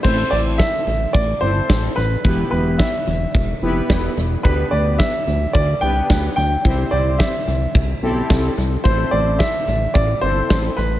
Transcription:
<<
  \new Staff \with { instrumentName = "Grand piano" } { \time 4/4 \key a \minor \tempo 4 = 109 c''8 d''8 e''4 d''8 c''4 b'8~ | b'8 b'8 e''2 r4 | b'8 d''8 e''4 d''8 g''4 g''8~ | g''8 d''8 e''2 r4 |
c''8 d''8 e''4 d''8 c''4 b'8 | }
  \new Staff \with { instrumentName = "Analog polysynth" } { \time 4/4 \key a \minor <c' e' a' c''>4 r4. <c' e' a' c''>4 r8 | <b e' g' b'>4 r4. <b e' g' b'>4 r8 | <b d' g' b'>4 r4. <b d' g' b'>4 r8 | <c' e' g' c''>4 r4. <c' e' g' a'>4 r8 |
<c' e' a' c''>4 r4. <c' e' a' c''>4 r8 | }
  \new Staff \with { instrumentName = "Analog synth bass" } { \clef bass \time 4/4 \key a \minor a,,8 a,,8. r16 a,,8 a,,8 g,,8 a,,8 a,,8 | e,,8 e,,8. r16 e,,8 e,,8 f,,8 e,,8 e,,8 | d,8 d,8. r16 d,8 d,8 c,8 d,8 d,8 | c,8 c,8. r16 c,8 c,8 b,,8 c,8 c,8 |
a,,8 a,,8. r16 a,,8 a,,8 g,,8 a,,8 a,,8 | }
  \new DrumStaff \with { instrumentName = "Drums" } \drummode { \time 4/4 <cymc bd>4 <bd sn>4 bd4 <bd sn>4 | bd4 <bd sn>4 bd4 <bd sn>4 | bd4 <bd sn>4 bd4 <bd sn>4 | bd4 <bd sn>4 bd4 <bd sn>4 |
bd4 <bd sn>4 bd4 <bd sn>4 | }
>>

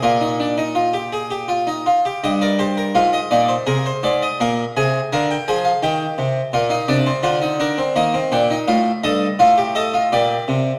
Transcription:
<<
  \new Staff \with { instrumentName = "Harpsichord" } { \time 3/4 \key ees \major \tempo 4 = 83 << { bes'2~ bes'8 r8 | ees''16 d''16 c''16 bes'16 f''16 ees''16 d''16 c''16 bes'16 c''16 d''16 ees''16 | f''8 aes''8 f''16 g''16 aes''16 f''16 g''4 | f''16 f''16 d''8 c''8 bes'8 ees''8 g''8 |
f''8 ees''8 f''8 ees''8 d''4 | } \\ { f'16 ees'16 d'16 ees'16 f'16 g'16 aes'16 g'16 f'16 ees'16 f'16 g'16 | g'16 bes'16 g'8 f'8 ees'8 aes'8 c''8 | bes'8 aes'8 bes'8 aes'8 g'4 | f'16 ees'16 d'16 c'16 f'16 ees'16 d'16 c'16 bes16 c'16 d'16 ees'16 |
f'8 a'8 f'16 g'16 a'16 f'16 g'4 | } >> }
  \new Staff \with { instrumentName = "Harpsichord" } { \clef bass \time 3/4 \key ees \major bes,2~ bes,8 r8 | g,4 aes,8 bes,8 c8 aes,8 | bes,8 c8 d8 f8 ees8 c8 | bes,8 c8 d4 ees8 bes,8 |
a,8 g,8 a,4 bes,8 c8 | }
>>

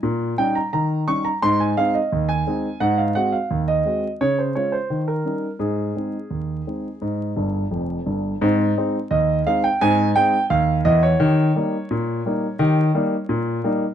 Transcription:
<<
  \new Staff \with { instrumentName = "Grand piano" } { \time 2/4 \key aes \major \tempo 4 = 86 r8 g''16 bes''16 bes''8 des'''16 bes''16 | c'''16 aes''16 f''16 ees''8 aes''8. | ges''16 f''16 ges''16 f''8 ees''8. | des''16 c''16 des''16 c''8 bes'8. |
aes'2~ | aes'4. r8 | r4 ees''8 f''16 g''16 | aes''8 g''8 f''8 ees''16 des''16~ |
des''2~ | des''4. r8 | }
  \new Staff \with { instrumentName = "Grand piano" } { \clef bass \time 2/4 \key aes \major bes,8 <g des' ees'>8 ees8 <g des' ees'>8 | aes,8 <aes c' ees'>8 ees,8 <aes c' ees'>8 | aes,8 <aes c' ges'>8 ees,8 <aes c' ges'>8 | des8 <aes des' f'>8 ees8 <g des' ees'>8 |
aes,8 <aes c' ees'>8 ees,8 <aes c' ees'>8 | aes,8 <g,, g,>8 <f,, f,>8 <g,, g,>8 | <aes, c'>8 <aes c' ees'>8 ees,8 <aes c' ees'>8 | <aes, c'>8 <aes c' ees'>8 ees,8 <fes, fes>8 |
<ees g'>8 <g bes ees'>8 bes,8 <g bes ees'>8 | <ees g'>8 <g bes ees'>8 bes,8 <g bes ees'>8 | }
>>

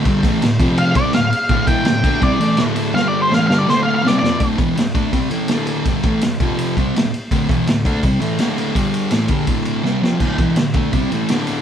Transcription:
<<
  \new Staff \with { instrumentName = "Lead electric guitar" } { \time 4/4 \key d \minor \tempo 4 = 165 r2 f''8 d''8 f''4~ | f''8 g''4. d''4 r4 | \tuplet 3/2 { f''8 d''8 c''8 f''8 f''8 d''8 c''8 f''8 f''8 d''8 d''4 } | r1 |
r1 | r1 | r1 | r1 | }
  \new Staff \with { instrumentName = "Distorted electric guitar" } { \clef bass \time 4/4 \key d \minor <g, d g>8 <a, e a>8 <d, a,>8 <f, c f>4 <c g c'>8 <d, a,>8 r8 | <d, a, d>8 <e, b, e>8 <d, a,>8 <d a d'>8 <c g c'>8 <a, e a>8 <d, a, d>4 | <g, d g>4 <a, e a>8 <g, d g>8 <d, a, d>4 <c g c'>8 <f, c f>8 | <d, a, d>8 <e, b, e>8 <d, a,>8 <d a d'>8 <c g c'>8 <a, e a>8 <d, a, d>4 |
<g, d g>8 <a, e a>8 <d, a,>8 <f, c f>4 <c g c'>8 <d, a,>8 r8 | <d, a, d>8 <e, b, e>8 <d, a,>8 <d a d'>8 <c g c'>8 <a, e a>8 <d, a, d>4 | <g, d g>4 <a, e a>8 <g, d g>8 <d, a, d>4 <c g c'>8 <f, c f>8 | <d, a, d>8 <e, b, e>8 <d, a,>8 <d a d'>8 <c g c'>8 <a, e a>8 <d, a, d>4 | }
  \new DrumStaff \with { instrumentName = "Drums" } \drummode { \time 4/4 <bd cymr>8 <bd cymr>8 <cymr sn>8 <bd cymr>8 cymr8 <bd cymr>8 <cymr sn>8 cymr8 | <bd cymr>8 <bd cymr>8 <cymr sn>8 <bd cymr>8 <bd cymr>8 cymr8 <cymr sn>8 cymr8 | sn4 sn8 sn8 sn4 sn8 sn8 | <bd cymr>8 <bd cymr>8 <cymr sn>8 <bd cymr>8 <bd cymr>8 cymr8 <cymr sn>8 cymr8 |
<bd cymr>8 <bd cymr>8 <cymr sn>8 <bd cymr>8 cymr8 <bd cymr>8 <cymr sn>8 cymr8 | <bd cymr>8 <bd cymr>8 <cymr sn>8 <bd cymr>8 <bd cymr>8 cymr8 <cymr sn>8 cymr8 | <bd cymr>8 cymr8 <cymr sn>8 <bd cymr>8 <bd cymr>8 cymr8 sn8 sn8 | <cymc bd>8 <bd cymr>8 <cymr sn>8 <bd cymr>8 <bd cymr>8 cymr8 <cymr sn>8 cymr8 | }
>>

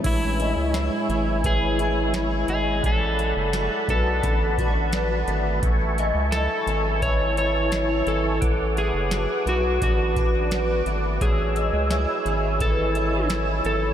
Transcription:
<<
  \new Staff \with { instrumentName = "Tonewheel organ" } { \time 4/4 \key a \major \tempo 4 = 86 << { <cis'' e'' gis''>1 | <d'' fis'' b''>1 | <e'' gis'' cis'''>1 | <fis'' d'''>1 |
<gis'' e'''>1 | } \\ { gis1 | a''1~ | a''1 | b'1 |
cis''1 | } >> }
  \new Staff \with { instrumentName = "Electric slide guitar" } { \time 4/4 \key a \major e'2 gis'4 r8 gis'8 | a'4. a'4 r4. | r4 a'4 cis''8 cis''4 a'8~ | a'8 gis'4 fis'8 fis'4. r8 |
gis'2 a'4 r8 a'8 | }
  \new Staff \with { instrumentName = "Twelve-string acoustic guitar" } { \time 4/4 \key a \major r8 gis8 e'8 cis'8 e8 e'8 cis'8 gis8 | r8 a8 fis'8 b8 d8 fis'8 b8 a8 | r8 gis8 e'8 cis'8 e8 e'8 cis'4 | r8 a8 fis'8 b8 d8 fis'8 b8 a8 |
r8 gis8 e'8 cis'8 e8 e'8 cis'4 | }
  \new Staff \with { instrumentName = "Analog synth bass" } { \clef bass \time 4/4 \key a \major a,,8. cis,8 r16 gis,,2 gis,,8 | a,,8. fis,,8 r16 b,,8 a,,4. gis,,8 | a,,8. cis,8 r16 gis,,2 gis,,8 | a,,8. fis,,8 r16 b,,8 a,,4. gis,,8 |
a,,8. cis,8 r16 gis,,2 gis,,8 | }
  \new DrumStaff \with { instrumentName = "Drums" } \drummode { \time 4/4 <cymc hh bd>8 hh8 <hh sn>8 hh8 <hh bd>8 hh8 <hh sn>8 hh8 | <hh bd>8 hh8 <hh sn>8 <hh bd>8 <hh bd>8 <hh bd>8 <hh sn>8 hh8 | <hh bd>8 hh8 <hh sn>8 hh8 <hh bd>8 hh8 <hh sn>8 hh8 | <hh bd>8 hh8 <hh sn>8 hh8 <hh bd>8 <hh bd>8 <hh sn>8 hh8 |
<hh bd>8 hh8 <hh sn>8 hh8 <hh bd>8 hh8 <hh sn>8 hh8 | }
>>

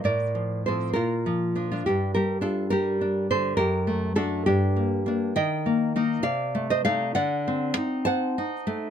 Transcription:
\new Staff \with { instrumentName = "Nylon-string guitar" } { \time 6/8 \key g \minor \tempo 4. = 67 << { <bes' d''>4 <a' c''>8 <f' bes'>4~ <f' bes'>16 <d' f'>16 | <d' g'>8 <g' bes'>8 <f' a'>8 <g' bes'>4 <a' c''>8 | <g' bes'>4 <fis' a'>8 <d' g'>4~ <d' g'>16 r16 | \key d \phrygian <ees'' g''>4. <d'' f''>8. <c'' ees''>16 <d'' f''>8 |
<d'' fis''>4. <fis'' a''>4. | } \\ { a,8 f8 <f c'>8 bes,8 f8 <f d'>8 | g,8 g8 d'8 g8 d'8 d8 | fis,8 a8 <a d'>8 g,8 bes8 <bes d'>8 | ees8 bes8 <bes ees'>8 c8 a8 <a ees'>8 |
d8 c'8 ees'8 c''8 ees'8 a8 | } >> }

